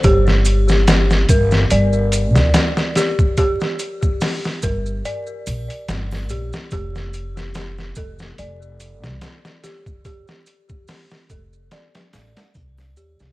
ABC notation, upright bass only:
X:1
M:4/4
L:1/16
Q:"Swing 16ths" 1/4=72
K:Gm
V:1 name="Upright bass" clef=bass
G,,,6 G,,,2 G,,,3 D,, z4 | z6 G,,,2 z2 B,,, z G,,,2 B,,, z | F,,,6 F,,,2 F,,,3 C,, z4 | z6 F,,,2 z2 A,,, z C,,2 E,, C,, |]